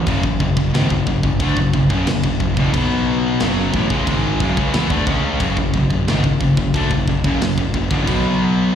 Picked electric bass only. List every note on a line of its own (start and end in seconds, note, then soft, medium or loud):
0.07 0.23 F#1 medium
0.23 0.39 F#1 medium
0.40 0.56 F#1 medium
0.57 0.73 F#1 medium
0.74 0.89 G#1 medium
0.89 1.06 F#1 medium
1.06 1.22 F#1 medium
1.24 1.39 F#1 medium
1.39 1.56 D2 loud
1.56 1.72 F#1 medium
1.73 1.89 F#1 medium
1.90 2.06 F#1 loud
2.08 2.23 F#1 medium
2.23 2.39 F#1 medium
2.40 2.56 F#1 medium
2.56 2.72 E1 medium
2.73 3.36 B1 loud
3.41 3.72 F#1 medium
3.73 3.89 A1 medium
3.90 4.06 C#2 loud
4.06 4.38 G#1 loud
4.40 4.56 F#1 loud
4.57 4.73 C#2 loud
4.75 4.89 E2 medium
4.90 5.06 D2 medium
5.07 5.38 C#2 loud
5.40 5.56 F#1 medium
5.57 5.73 F#1 medium
5.74 5.90 F#1 medium
5.90 6.06 F#1 medium
6.09 6.22 G#1 loud
6.23 6.39 F#1 medium
6.40 6.56 F#1 medium
6.58 6.73 F#1 medium
6.74 6.89 D2 loud
6.90 7.06 F#1 medium
7.07 7.23 F#1 medium
7.25 7.40 F#1 loud
7.41 7.56 F#1 medium
7.57 7.72 F#1 medium
7.73 7.89 F#1 medium
7.91 8.06 E1 loud
8.07 8.70 B1 medium